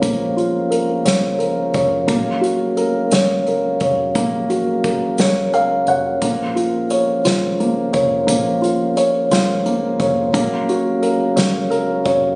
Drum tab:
HH |xxxxxx|xxxxxx|xxxxxx|xxxxxx|
SD |---o--|---o--|---o--|---o--|
BD |o----o|o----o|o-o---|o----o|

HH |xxxxxx|xxxxxx|
SD |---o--|---o--|
BD |o----o|o----o|